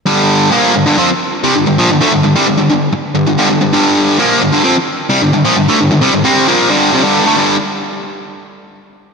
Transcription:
\new Staff \with { instrumentName = "Distorted electric guitar" } { \clef bass \time 4/4 \key c \major \tempo 4 = 131 <g, d g>4 <bes, f bes>8 <g, d>16 <g, d>16 <f c'>16 r8. <c g>16 <g, d>16 <g, d>16 <bes, f>16 | <g, d>16 <d a>16 <g, d>16 <g, d>16 <c g>16 <g, d>16 <g, d>16 <g, d>8 r8 <g, d>16 <g, d>16 <g, d>16 <g, d>16 <g, d>16 | <g, d g>4 <bes, f bes>8 <g, d>16 <g, d>16 <f c'>16 r8. <c g>16 <g, d>16 <g, d>16 <bes, f>16 | <g, d>16 <d a>16 <g, d>16 <g, d>16 <c g>16 <g, d>16 <c g c'>8 <bes, f bes>8 <g, d g>8 <f, c>16 <g, d g>8 <d a>16 |
<g, d g>8 r2. r8 | }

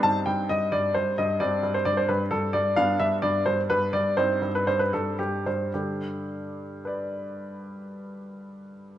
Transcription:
<<
  \new Staff \with { instrumentName = "Grand piano" } { \time 3/4 \key g \major \tempo 4 = 123 << { <c' ees'>2. | <c' d'>2. | <b d'>2. | <c' ees'>2. |
r2 <b' d''>4~ | <b' d''>2. | } \\ { a''8 g''8 ees''8 d''8 c''8 ees''8 | d''8. c''16 d''16 c''16 b'8 a'8 d''8 | f''8 e''8 d''8 c''8 b'8 d''8 | c''8. b'16 c''16 b'16 a'8 g'8 c''8 |
g'2.~ | g'2. | } >> }
  \new Staff \with { instrumentName = "Grand piano" } { \clef bass \time 3/4 \key g \major g,8 g,8 g,8 g,8 g,8 g,8 | g,8 g,8 g,8 g,8 g,8 g,8 | g,8 g,8 g,8 g,8 g,8 g,8 | g,8 g,8 g,8 g,8 g,8 g,8 |
<g, d>2.~ | <g, d>2. | }
>>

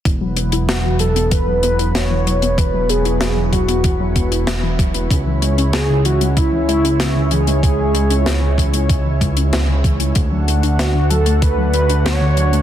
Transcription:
<<
  \new Staff \with { instrumentName = "Analog synth lead" } { \time 4/4 \key e \major \tempo 4 = 95 r4 fis'8 a'8 b'8 b'8 cis''4 | b'8 gis'4 fis'4. r4 | r4 gis'8 fis'8 e'8 e'4 gis'8 | gis'4. r2 r8 |
r4 fis'8 a'8 b'8 b'8 cis''4 | }
  \new Staff \with { instrumentName = "Analog synth pad" } { \time 4/4 \key e \major << { <fis b b'>1~ | <fis b b'>1 | <gis cis' cis''>1~ | <gis cis' cis''>1 |
<a d' fis''>1 | } \\ { e'1~ | e'1~ | e'1~ | e'1 |
fis'1 | } >> }
  \new Staff \with { instrumentName = "Synth arpeggio sound" } { \clef bass \time 4/4 \key e \major e16 fis16 b16 e'16 fis'16 e16 fis16 b16 e16 fis16 b16 e'16 fis'16 e16 fis16 b16 | e16 fis16 b16 e'16 fis'16 e16 fis16 b16 e16 fis16 b16 e'16 fis'16 e16 fis16 b16 | cis16 e16 gis16 cis'16 e'16 cis16 e16 gis16 cis16 e16 gis16 cis'16 e'16 cis16 e16 gis16 | cis16 e16 gis16 cis'16 e'16 cis16 e16 gis16 cis16 e16 gis16 cis'16 e'16 cis16 e16 gis16 |
d16 fis16 a16 d'16 fis'16 d16 fis16 a16 d16 fis16 a16 d'16 fis'16 d16 fis16 a16 | }
  \new Staff \with { instrumentName = "Analog synth bass" } { \clef bass \time 4/4 \key e \major e,,1~ | e,,1 | cis,1~ | cis,1 |
d,1 | }
  \new DrumStaff \with { instrumentName = "Drums" } \drummode { \time 4/4 <hh bd>8 hh16 hh16 <hh sn>8 hh16 hh16 <hh bd>8 hh16 hh16 <hh sn>8 hh16 hh16 | <hh bd>8 hh16 hh16 <hh sn>8 <hh bd>16 hh16 <hh bd>8 <hh bd>16 hh16 <hh sn>8 <hh bd>16 hh16 | <hh bd>8 hh16 hh16 <hh sn>8 hh16 hh16 <hh bd>8 hh16 hh16 <hh sn>8 hh16 hh16 | <hh bd>8 hh16 hh16 <hh sn>8 <hh bd>16 hh16 <hh bd>8 <hh bd>16 hh16 <hh sn>8 <hh bd>16 hh16 |
<hh bd>8 hh16 hh16 <hh sn>8 hh16 hh16 <hh bd>8 hh16 hh16 <hh sn>8 hh16 hh16 | }
>>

